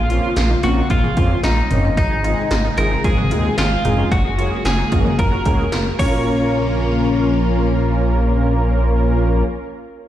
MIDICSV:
0, 0, Header, 1, 7, 480
1, 0, Start_track
1, 0, Key_signature, -5, "minor"
1, 0, Tempo, 535714
1, 1768, Time_signature, 4, 2, 24, 8
1, 9033, End_track
2, 0, Start_track
2, 0, Title_t, "Clean electric guitar"
2, 0, Program_c, 0, 27
2, 0, Note_on_c, 0, 65, 96
2, 567, Note_off_c, 0, 65, 0
2, 570, Note_on_c, 0, 66, 91
2, 808, Note_off_c, 0, 66, 0
2, 812, Note_on_c, 0, 65, 91
2, 1257, Note_off_c, 0, 65, 0
2, 1292, Note_on_c, 0, 63, 83
2, 1761, Note_off_c, 0, 63, 0
2, 1772, Note_on_c, 0, 63, 82
2, 2489, Note_on_c, 0, 70, 98
2, 2511, Note_off_c, 0, 63, 0
2, 2728, Note_off_c, 0, 70, 0
2, 2731, Note_on_c, 0, 68, 87
2, 3206, Note_off_c, 0, 68, 0
2, 3210, Note_on_c, 0, 65, 81
2, 3686, Note_off_c, 0, 65, 0
2, 3689, Note_on_c, 0, 66, 86
2, 4168, Note_off_c, 0, 66, 0
2, 4171, Note_on_c, 0, 68, 86
2, 4649, Note_off_c, 0, 68, 0
2, 4652, Note_on_c, 0, 70, 80
2, 5334, Note_off_c, 0, 70, 0
2, 5370, Note_on_c, 0, 73, 79
2, 8453, Note_off_c, 0, 73, 0
2, 9033, End_track
3, 0, Start_track
3, 0, Title_t, "Synth pluck"
3, 0, Program_c, 1, 84
3, 86, Note_on_c, 1, 65, 79
3, 269, Note_off_c, 1, 65, 0
3, 328, Note_on_c, 1, 65, 83
3, 419, Note_off_c, 1, 65, 0
3, 449, Note_on_c, 1, 63, 75
3, 540, Note_off_c, 1, 63, 0
3, 568, Note_on_c, 1, 65, 84
3, 659, Note_off_c, 1, 65, 0
3, 688, Note_on_c, 1, 63, 74
3, 779, Note_off_c, 1, 63, 0
3, 809, Note_on_c, 1, 65, 86
3, 899, Note_off_c, 1, 65, 0
3, 929, Note_on_c, 1, 68, 70
3, 1019, Note_off_c, 1, 68, 0
3, 1049, Note_on_c, 1, 65, 76
3, 1231, Note_off_c, 1, 65, 0
3, 1288, Note_on_c, 1, 65, 83
3, 1470, Note_off_c, 1, 65, 0
3, 1530, Note_on_c, 1, 63, 80
3, 1620, Note_off_c, 1, 63, 0
3, 1649, Note_on_c, 1, 61, 72
3, 1739, Note_off_c, 1, 61, 0
3, 1768, Note_on_c, 1, 63, 97
3, 1859, Note_off_c, 1, 63, 0
3, 1889, Note_on_c, 1, 68, 75
3, 1979, Note_off_c, 1, 68, 0
3, 2008, Note_on_c, 1, 65, 76
3, 2190, Note_off_c, 1, 65, 0
3, 2249, Note_on_c, 1, 65, 87
3, 2340, Note_off_c, 1, 65, 0
3, 2369, Note_on_c, 1, 63, 74
3, 2460, Note_off_c, 1, 63, 0
3, 2487, Note_on_c, 1, 65, 81
3, 2578, Note_off_c, 1, 65, 0
3, 2608, Note_on_c, 1, 63, 73
3, 2699, Note_off_c, 1, 63, 0
3, 2728, Note_on_c, 1, 65, 87
3, 2819, Note_off_c, 1, 65, 0
3, 2848, Note_on_c, 1, 66, 68
3, 2939, Note_off_c, 1, 66, 0
3, 2968, Note_on_c, 1, 65, 76
3, 3150, Note_off_c, 1, 65, 0
3, 3208, Note_on_c, 1, 65, 78
3, 3390, Note_off_c, 1, 65, 0
3, 3449, Note_on_c, 1, 63, 81
3, 3539, Note_off_c, 1, 63, 0
3, 3568, Note_on_c, 1, 61, 71
3, 3659, Note_off_c, 1, 61, 0
3, 3687, Note_on_c, 1, 66, 94
3, 3779, Note_off_c, 1, 66, 0
3, 3808, Note_on_c, 1, 68, 74
3, 3899, Note_off_c, 1, 68, 0
3, 3929, Note_on_c, 1, 65, 78
3, 4110, Note_off_c, 1, 65, 0
3, 4169, Note_on_c, 1, 65, 83
3, 4260, Note_off_c, 1, 65, 0
3, 4288, Note_on_c, 1, 63, 72
3, 4379, Note_off_c, 1, 63, 0
3, 4407, Note_on_c, 1, 65, 78
3, 4499, Note_off_c, 1, 65, 0
3, 4526, Note_on_c, 1, 63, 71
3, 4618, Note_off_c, 1, 63, 0
3, 4646, Note_on_c, 1, 65, 85
3, 4738, Note_off_c, 1, 65, 0
3, 4766, Note_on_c, 1, 66, 73
3, 4858, Note_off_c, 1, 66, 0
3, 4887, Note_on_c, 1, 65, 75
3, 5070, Note_off_c, 1, 65, 0
3, 5128, Note_on_c, 1, 65, 81
3, 5310, Note_off_c, 1, 65, 0
3, 5369, Note_on_c, 1, 58, 71
3, 5404, Note_on_c, 1, 61, 73
3, 5441, Note_on_c, 1, 65, 72
3, 5476, Note_on_c, 1, 70, 72
3, 8452, Note_off_c, 1, 58, 0
3, 8488, Note_off_c, 1, 61, 0
3, 8524, Note_off_c, 1, 65, 0
3, 8560, Note_off_c, 1, 70, 0
3, 9033, End_track
4, 0, Start_track
4, 0, Title_t, "Analog polysynth"
4, 0, Program_c, 2, 90
4, 89, Note_on_c, 2, 58, 74
4, 89, Note_on_c, 2, 60, 68
4, 89, Note_on_c, 2, 61, 68
4, 89, Note_on_c, 2, 65, 84
4, 258, Note_off_c, 2, 58, 0
4, 258, Note_off_c, 2, 60, 0
4, 258, Note_off_c, 2, 61, 0
4, 258, Note_off_c, 2, 65, 0
4, 568, Note_on_c, 2, 58, 74
4, 568, Note_on_c, 2, 61, 67
4, 569, Note_on_c, 2, 60, 69
4, 569, Note_on_c, 2, 65, 82
4, 738, Note_off_c, 2, 58, 0
4, 738, Note_off_c, 2, 60, 0
4, 738, Note_off_c, 2, 61, 0
4, 738, Note_off_c, 2, 65, 0
4, 1048, Note_on_c, 2, 58, 75
4, 1049, Note_on_c, 2, 60, 69
4, 1049, Note_on_c, 2, 61, 71
4, 1049, Note_on_c, 2, 65, 81
4, 1218, Note_off_c, 2, 58, 0
4, 1218, Note_off_c, 2, 60, 0
4, 1218, Note_off_c, 2, 61, 0
4, 1218, Note_off_c, 2, 65, 0
4, 1529, Note_on_c, 2, 58, 74
4, 1529, Note_on_c, 2, 60, 68
4, 1529, Note_on_c, 2, 61, 69
4, 1529, Note_on_c, 2, 63, 82
4, 1698, Note_off_c, 2, 58, 0
4, 1698, Note_off_c, 2, 60, 0
4, 1698, Note_off_c, 2, 61, 0
4, 1698, Note_off_c, 2, 63, 0
4, 2008, Note_on_c, 2, 60, 66
4, 2009, Note_on_c, 2, 56, 77
4, 2009, Note_on_c, 2, 63, 70
4, 2009, Note_on_c, 2, 68, 79
4, 2178, Note_off_c, 2, 56, 0
4, 2178, Note_off_c, 2, 60, 0
4, 2178, Note_off_c, 2, 63, 0
4, 2178, Note_off_c, 2, 68, 0
4, 2486, Note_on_c, 2, 56, 74
4, 2486, Note_on_c, 2, 63, 67
4, 2486, Note_on_c, 2, 68, 82
4, 2487, Note_on_c, 2, 60, 64
4, 2657, Note_off_c, 2, 56, 0
4, 2657, Note_off_c, 2, 60, 0
4, 2657, Note_off_c, 2, 63, 0
4, 2657, Note_off_c, 2, 68, 0
4, 2965, Note_on_c, 2, 56, 76
4, 2966, Note_on_c, 2, 60, 69
4, 2966, Note_on_c, 2, 68, 80
4, 2967, Note_on_c, 2, 63, 69
4, 3136, Note_off_c, 2, 56, 0
4, 3137, Note_off_c, 2, 60, 0
4, 3137, Note_off_c, 2, 63, 0
4, 3137, Note_off_c, 2, 68, 0
4, 3448, Note_on_c, 2, 56, 74
4, 3448, Note_on_c, 2, 63, 67
4, 3449, Note_on_c, 2, 60, 69
4, 3449, Note_on_c, 2, 68, 83
4, 3618, Note_off_c, 2, 56, 0
4, 3618, Note_off_c, 2, 60, 0
4, 3618, Note_off_c, 2, 63, 0
4, 3618, Note_off_c, 2, 68, 0
4, 3928, Note_on_c, 2, 68, 82
4, 3929, Note_on_c, 2, 58, 76
4, 3929, Note_on_c, 2, 61, 69
4, 3929, Note_on_c, 2, 66, 68
4, 4098, Note_off_c, 2, 58, 0
4, 4098, Note_off_c, 2, 61, 0
4, 4098, Note_off_c, 2, 66, 0
4, 4098, Note_off_c, 2, 68, 0
4, 4410, Note_on_c, 2, 58, 74
4, 4410, Note_on_c, 2, 61, 64
4, 4410, Note_on_c, 2, 66, 67
4, 4410, Note_on_c, 2, 70, 81
4, 4578, Note_off_c, 2, 66, 0
4, 4578, Note_off_c, 2, 70, 0
4, 4579, Note_off_c, 2, 58, 0
4, 4579, Note_off_c, 2, 61, 0
4, 4888, Note_on_c, 2, 58, 74
4, 4888, Note_on_c, 2, 66, 69
4, 4889, Note_on_c, 2, 61, 67
4, 4889, Note_on_c, 2, 68, 82
4, 5058, Note_off_c, 2, 58, 0
4, 5058, Note_off_c, 2, 61, 0
4, 5058, Note_off_c, 2, 66, 0
4, 5058, Note_off_c, 2, 68, 0
4, 5369, Note_on_c, 2, 61, 74
4, 5369, Note_on_c, 2, 70, 89
4, 5370, Note_on_c, 2, 58, 82
4, 5370, Note_on_c, 2, 65, 73
4, 8453, Note_off_c, 2, 58, 0
4, 8453, Note_off_c, 2, 61, 0
4, 8453, Note_off_c, 2, 65, 0
4, 8453, Note_off_c, 2, 70, 0
4, 9033, End_track
5, 0, Start_track
5, 0, Title_t, "String machine"
5, 0, Program_c, 3, 50
5, 0, Note_on_c, 3, 49, 83
5, 0, Note_on_c, 3, 53, 78
5, 0, Note_on_c, 3, 58, 75
5, 0, Note_on_c, 3, 60, 76
5, 0, Note_on_c, 3, 65, 89
5, 1733, Note_off_c, 3, 53, 0
5, 1750, Note_off_c, 3, 49, 0
5, 1750, Note_off_c, 3, 58, 0
5, 1750, Note_off_c, 3, 60, 0
5, 1750, Note_off_c, 3, 65, 0
5, 1769, Note_on_c, 3, 51, 75
5, 1769, Note_on_c, 3, 56, 76
5, 1769, Note_on_c, 3, 63, 76
5, 1770, Note_on_c, 3, 48, 82
5, 1770, Note_on_c, 3, 68, 90
5, 3669, Note_off_c, 3, 51, 0
5, 3669, Note_off_c, 3, 63, 0
5, 3670, Note_off_c, 3, 48, 0
5, 3670, Note_off_c, 3, 68, 0
5, 3688, Note_on_c, 3, 58, 77
5, 3689, Note_on_c, 3, 49, 79
5, 3689, Note_on_c, 3, 54, 75
5, 3689, Note_on_c, 3, 66, 90
5, 5333, Note_off_c, 3, 56, 0
5, 5351, Note_off_c, 3, 58, 0
5, 5352, Note_off_c, 3, 49, 0
5, 5352, Note_off_c, 3, 54, 0
5, 5352, Note_off_c, 3, 66, 0
5, 5371, Note_on_c, 3, 58, 76
5, 5372, Note_on_c, 3, 49, 82
5, 5372, Note_on_c, 3, 53, 72
5, 5372, Note_on_c, 3, 61, 76
5, 5372, Note_on_c, 3, 65, 91
5, 8455, Note_off_c, 3, 49, 0
5, 8455, Note_off_c, 3, 53, 0
5, 8455, Note_off_c, 3, 58, 0
5, 8455, Note_off_c, 3, 61, 0
5, 8455, Note_off_c, 3, 65, 0
5, 9033, End_track
6, 0, Start_track
6, 0, Title_t, "Analog synth bass"
6, 0, Program_c, 4, 38
6, 0, Note_on_c, 4, 34, 110
6, 184, Note_off_c, 4, 34, 0
6, 328, Note_on_c, 4, 34, 104
6, 496, Note_off_c, 4, 34, 0
6, 569, Note_on_c, 4, 34, 103
6, 737, Note_off_c, 4, 34, 0
6, 808, Note_on_c, 4, 34, 97
6, 976, Note_off_c, 4, 34, 0
6, 1050, Note_on_c, 4, 41, 92
6, 1217, Note_off_c, 4, 41, 0
6, 1290, Note_on_c, 4, 34, 98
6, 1457, Note_off_c, 4, 34, 0
6, 1530, Note_on_c, 4, 30, 92
6, 1767, Note_on_c, 4, 32, 106
6, 1781, Note_off_c, 4, 30, 0
6, 2104, Note_off_c, 4, 32, 0
6, 2249, Note_on_c, 4, 32, 101
6, 2416, Note_off_c, 4, 32, 0
6, 2488, Note_on_c, 4, 32, 108
6, 2656, Note_off_c, 4, 32, 0
6, 2727, Note_on_c, 4, 32, 98
6, 2968, Note_on_c, 4, 39, 85
6, 2982, Note_off_c, 4, 32, 0
6, 3136, Note_off_c, 4, 39, 0
6, 3208, Note_on_c, 4, 32, 99
6, 3376, Note_off_c, 4, 32, 0
6, 3449, Note_on_c, 4, 29, 78
6, 3616, Note_off_c, 4, 29, 0
6, 3687, Note_on_c, 4, 30, 105
6, 4024, Note_off_c, 4, 30, 0
6, 4169, Note_on_c, 4, 30, 99
6, 4336, Note_off_c, 4, 30, 0
6, 4410, Note_on_c, 4, 30, 105
6, 4577, Note_off_c, 4, 30, 0
6, 4648, Note_on_c, 4, 30, 95
6, 4816, Note_off_c, 4, 30, 0
6, 4890, Note_on_c, 4, 37, 91
6, 5057, Note_off_c, 4, 37, 0
6, 5130, Note_on_c, 4, 30, 97
6, 5297, Note_off_c, 4, 30, 0
6, 5369, Note_on_c, 4, 34, 97
6, 8453, Note_off_c, 4, 34, 0
6, 9033, End_track
7, 0, Start_track
7, 0, Title_t, "Drums"
7, 89, Note_on_c, 9, 42, 61
7, 179, Note_off_c, 9, 42, 0
7, 326, Note_on_c, 9, 42, 61
7, 328, Note_on_c, 9, 38, 104
7, 415, Note_off_c, 9, 42, 0
7, 418, Note_off_c, 9, 38, 0
7, 566, Note_on_c, 9, 42, 59
7, 656, Note_off_c, 9, 42, 0
7, 806, Note_on_c, 9, 42, 68
7, 807, Note_on_c, 9, 36, 94
7, 896, Note_off_c, 9, 42, 0
7, 897, Note_off_c, 9, 36, 0
7, 931, Note_on_c, 9, 47, 66
7, 1021, Note_off_c, 9, 47, 0
7, 1046, Note_on_c, 9, 42, 65
7, 1050, Note_on_c, 9, 36, 88
7, 1136, Note_off_c, 9, 42, 0
7, 1139, Note_off_c, 9, 36, 0
7, 1286, Note_on_c, 9, 38, 99
7, 1287, Note_on_c, 9, 42, 77
7, 1375, Note_off_c, 9, 38, 0
7, 1377, Note_off_c, 9, 42, 0
7, 1528, Note_on_c, 9, 45, 83
7, 1529, Note_on_c, 9, 42, 64
7, 1618, Note_off_c, 9, 42, 0
7, 1618, Note_off_c, 9, 45, 0
7, 1768, Note_on_c, 9, 36, 109
7, 1769, Note_on_c, 9, 42, 69
7, 1857, Note_off_c, 9, 36, 0
7, 1858, Note_off_c, 9, 42, 0
7, 2010, Note_on_c, 9, 42, 61
7, 2100, Note_off_c, 9, 42, 0
7, 2246, Note_on_c, 9, 42, 62
7, 2249, Note_on_c, 9, 38, 102
7, 2336, Note_off_c, 9, 42, 0
7, 2339, Note_off_c, 9, 38, 0
7, 2487, Note_on_c, 9, 42, 58
7, 2576, Note_off_c, 9, 42, 0
7, 2727, Note_on_c, 9, 36, 97
7, 2727, Note_on_c, 9, 42, 66
7, 2816, Note_off_c, 9, 36, 0
7, 2816, Note_off_c, 9, 42, 0
7, 2852, Note_on_c, 9, 47, 67
7, 2941, Note_off_c, 9, 47, 0
7, 2967, Note_on_c, 9, 42, 63
7, 3057, Note_off_c, 9, 42, 0
7, 3205, Note_on_c, 9, 38, 100
7, 3207, Note_on_c, 9, 42, 75
7, 3295, Note_off_c, 9, 38, 0
7, 3296, Note_off_c, 9, 42, 0
7, 3448, Note_on_c, 9, 45, 82
7, 3449, Note_on_c, 9, 42, 61
7, 3538, Note_off_c, 9, 42, 0
7, 3538, Note_off_c, 9, 45, 0
7, 3688, Note_on_c, 9, 36, 106
7, 3688, Note_on_c, 9, 42, 70
7, 3777, Note_off_c, 9, 36, 0
7, 3778, Note_off_c, 9, 42, 0
7, 3930, Note_on_c, 9, 42, 60
7, 4020, Note_off_c, 9, 42, 0
7, 4167, Note_on_c, 9, 42, 59
7, 4169, Note_on_c, 9, 38, 100
7, 4256, Note_off_c, 9, 42, 0
7, 4259, Note_off_c, 9, 38, 0
7, 4407, Note_on_c, 9, 42, 56
7, 4410, Note_on_c, 9, 36, 91
7, 4496, Note_off_c, 9, 42, 0
7, 4500, Note_off_c, 9, 36, 0
7, 4532, Note_on_c, 9, 47, 89
7, 4622, Note_off_c, 9, 47, 0
7, 4648, Note_on_c, 9, 36, 95
7, 4648, Note_on_c, 9, 42, 65
7, 4738, Note_off_c, 9, 36, 0
7, 4738, Note_off_c, 9, 42, 0
7, 4887, Note_on_c, 9, 42, 61
7, 4888, Note_on_c, 9, 45, 85
7, 4890, Note_on_c, 9, 36, 83
7, 4977, Note_off_c, 9, 42, 0
7, 4978, Note_off_c, 9, 45, 0
7, 4980, Note_off_c, 9, 36, 0
7, 5127, Note_on_c, 9, 38, 100
7, 5128, Note_on_c, 9, 42, 75
7, 5217, Note_off_c, 9, 38, 0
7, 5218, Note_off_c, 9, 42, 0
7, 5369, Note_on_c, 9, 36, 95
7, 5370, Note_on_c, 9, 49, 79
7, 5459, Note_off_c, 9, 36, 0
7, 5459, Note_off_c, 9, 49, 0
7, 9033, End_track
0, 0, End_of_file